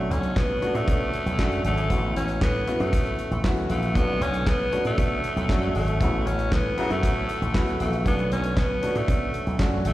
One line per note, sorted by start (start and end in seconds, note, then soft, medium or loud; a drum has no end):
0.00 0.14 A3 medium
0.00 0.30 A3 medium
0.00 0.30 C#4 medium
0.00 0.30 D4 medium
0.00 0.30 F#4 medium
0.00 5.97 A4 medium
0.00 1.88 C#5 medium
0.00 8.02 C#6 medium
0.11 0.32 B1 medium
0.11 0.39 C#4 medium
0.11 closed hi-hat medium
0.23 closed hi-hat soft
0.36 0.58 B2 loud
0.36 0.77 B3 loud
0.36 kick loud
0.36 snare loud
0.36 clap medium
0.62 1.07 A3 medium
0.62 1.07 C#4 medium
0.62 1.07 D4 medium
0.62 1.07 F#4 medium
0.62 closed hi-hat medium
0.75 0.86 A2 medium
0.75 1.65 A3 loud
0.75 closed hi-hat medium
0.88 1.09 B2 loud
0.88 kick loud
0.88 closed hi-hat loud
1.14 closed hi-hat medium
1.26 1.37 B1 loud
1.26 closed hi-hat soft
1.38 1.61 F#2 loud
1.38 1.69 A3 medium
1.38 1.69 C#4 medium
1.38 1.69 D4 medium
1.38 1.69 F#4 loud
1.38 kick loud
1.38 snare loud
1.38 clap medium
1.52 closed hi-hat soft
1.64 1.86 G#1 medium
1.64 2.13 A3 medium
1.64 closed hi-hat medium
1.77 closed hi-hat soft
1.90 2.12 A1 loud
1.90 2.35 B3 medium
1.90 2.35 C#4 medium
1.90 2.35 E4 medium
1.90 2.36 F#4 medium
1.90 3.93 F#5 medium
1.90 kick loud
1.90 closed hi-hat medium
2.16 2.38 A1 loud
2.16 2.40 C#4 medium
2.16 closed hi-hat medium
2.28 closed hi-hat medium
2.41 2.63 A2 loud
2.41 2.83 B3 loud
2.41 kick loud
2.41 snare loud
2.41 clap loud
2.67 3.12 B3 medium
2.67 3.12 C#4 medium
2.67 3.13 E4 medium
2.67 3.13 F#4 medium
2.67 closed hi-hat medium
2.80 2.91 F#2 loud
2.80 3.43 A3 medium
2.80 closed hi-hat medium
2.93 3.15 A2 loud
2.93 kick loud
2.93 closed hi-hat loud
3.06 closed hi-hat soft
3.19 closed hi-hat medium
3.31 3.42 A1 loud
3.31 closed hi-hat soft
3.44 3.66 E2 loud
3.44 3.74 B3 medium
3.44 3.74 C#4 medium
3.44 3.74 E4 medium
3.44 3.75 F#4 loud
3.44 kick loud
3.44 snare loud
3.44 clap medium
3.57 closed hi-hat soft
3.70 3.91 A#1 medium
3.70 3.98 A3 medium
3.70 closed hi-hat medium
3.82 closed hi-hat soft
3.95 4.17 B1 loud
3.95 4.40 A3 medium
3.95 4.24 B3 loud
3.95 4.41 C#4 medium
3.95 4.41 D4 medium
3.95 4.41 F#4 medium
3.95 5.98 C#5 medium
3.95 kick loud
3.95 closed hi-hat medium
4.21 4.43 B1 loud
4.21 4.49 C#4 loud
4.21 closed hi-hat medium
4.34 closed hi-hat medium
4.47 4.68 B2 loud
4.47 4.86 B3 loud
4.47 kick loud
4.47 snare loud
4.47 clap loud
4.72 5.17 A3 medium
4.72 5.18 C#4 medium
4.72 5.18 D4 medium
4.72 5.18 F#4 medium
4.72 closed hi-hat medium
4.85 4.96 A2 medium
4.85 5.72 A3 loud
4.85 closed hi-hat medium
4.98 5.20 B2 loud
4.98 kick loud
4.98 closed hi-hat loud
5.24 closed hi-hat medium
5.36 5.47 B1 loud
5.36 closed hi-hat soft
5.49 5.71 F#2 medium
5.49 5.79 A3 medium
5.49 5.79 C#4 medium
5.49 5.80 D4 medium
5.49 5.80 F#4 medium
5.49 kick loud
5.49 snare loud
5.49 clap medium
5.62 closed hi-hat soft
5.75 5.97 G#1 medium
5.75 6.29 A3 medium
5.75 open hi-hat medium
5.88 closed hi-hat soft
6.00 6.22 A1 medium
6.00 6.09 C#3 loud
6.00 6.09 F#3 medium
6.00 6.09 A3 medium
6.00 6.45 B3 medium
6.00 6.46 C#4 medium
6.00 6.46 E4 medium
6.00 6.09 F#4 medium
6.00 6.46 F#4 medium
6.00 9.93 A4 medium
6.00 8.04 F#5 medium
6.00 kick loud
6.00 closed hi-hat medium
6.26 6.48 A1 medium
6.26 6.55 C#4 medium
6.26 closed hi-hat medium
6.39 closed hi-hat medium
6.52 6.74 A2 loud
6.52 6.91 B3 loud
6.52 kick loud
6.52 snare loud
6.52 clap medium
6.77 6.94 C#3 loud
6.77 6.94 F#3 loud
6.77 6.94 A3 loud
6.77 7.22 B3 medium
6.77 7.23 C#4 medium
6.77 7.23 E4 medium
6.77 6.94 F#4 loud
6.77 7.23 F#4 medium
6.77 closed hi-hat medium
6.90 7.01 F#2 loud
6.90 7.77 A3 loud
6.90 closed hi-hat medium
7.03 7.25 A2 loud
7.03 kick loud
7.03 closed hi-hat loud
7.29 closed hi-hat medium
7.42 7.52 A1 loud
7.42 closed hi-hat soft
7.54 7.76 E2 loud
7.54 7.84 B3 medium
7.54 7.84 C#4 medium
7.54 7.85 E4 medium
7.54 7.85 F#4 loud
7.54 kick loud
7.54 snare loud
7.54 clap medium
7.67 closed hi-hat soft
7.80 8.02 A#1 medium
7.80 8.05 A3 medium
7.80 closed hi-hat medium
7.93 closed hi-hat medium
8.06 8.27 B1 loud
8.06 8.51 A3 medium
8.06 8.31 B3 medium
8.06 8.51 C#4 medium
8.06 8.51 D4 medium
8.06 8.51 F#4 medium
8.06 9.93 C#5 medium
8.06 9.93 C#6 medium
8.06 kick loud
8.06 closed hi-hat medium
8.19 closed hi-hat soft
8.32 8.53 B1 loud
8.32 8.60 C#4 medium
8.32 closed hi-hat medium
8.44 closed hi-hat medium
8.57 8.79 B2 loud
8.57 8.98 B3 loud
8.57 kick loud
8.57 snare loud
8.57 clap medium
8.82 9.28 A3 medium
8.82 9.28 C#4 medium
8.82 9.28 D4 medium
8.82 9.28 F#4 medium
8.82 closed hi-hat medium
8.95 9.06 A2 medium
8.95 9.59 A3 medium
8.95 closed hi-hat medium
9.08 9.30 B2 loud
9.08 kick loud
9.08 closed hi-hat loud
9.34 closed hi-hat medium
9.47 9.58 B1 loud
9.47 closed hi-hat soft
9.59 9.81 F#2 medium
9.59 9.90 A3 medium
9.59 9.90 C#4 medium
9.59 9.90 D4 medium
9.59 9.90 F#4 loud
9.59 kick loud
9.59 snare loud
9.59 clap medium
9.85 9.93 G#1 medium
9.85 9.93 A3 loud
9.85 closed hi-hat medium